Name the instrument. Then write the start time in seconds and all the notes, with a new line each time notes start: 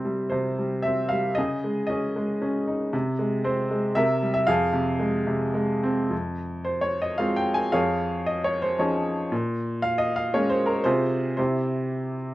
upright piano
Already playing: C3 G3 C4 E4 C5
0.05 G3
0.30 C3 C5
0.59 G3
0.82 C4 E5
1.09 G3 F5
1.35 C#3 G#4 D#5
1.64 G#3
1.87 C#4 G#4 D#5
2.16 G#3
2.42 C#4
2.67 D#4
2.93 C3
3.19 G#3
3.44 C4 C5
3.71 G#3
3.95 C3 A#4 E5
4.22 G3
4.34 E5
4.47 F2 G#4 F5
4.73 C3
4.99 G#3
5.27 C3
5.54 G#3
5.83 C4
6.10 F2
6.65 C5
6.81 C#5
7.02 D#5
7.18 G#3 C4 F4 F5
7.36 G5
7.54 G#5
7.72 F2 G#4 C#5 F5
8.26 D#5
8.44 C#5
8.62 C5
8.78 F3 C#4 D#4 G#4 C#5
9.32 A#2
9.82 F5
9.98 D#5
10.16 F5
10.34 G#3 A#3 C#4 C#5
10.50 C5
10.66 A#4
10.84 C3 F4 G#4 C5
11.37 C3 E4 G4 C5